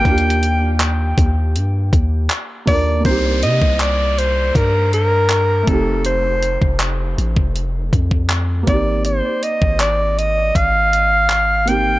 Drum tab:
HH |x-x-x-x-----x-----x-----x-----x-----x-----o-----|x-----x-----x-----x-----x-----x-----x-----x-----|x-----x-----x-----x-----x-----x-----x-----x-----|x-----x-----x-----x-----x-----x-----x-----x-----|
CP |------------x-----------------------x-----------|------------x-----------------------x-----------|------------x-----------------------x-----------|------------x-----------------------x-----------|
BD |o-----------------o-----------o-----------o-----|o--------o--------------o-----------------o-----|---------o-----------o--------o--o--------o-----|---------o--------------o-----------------------|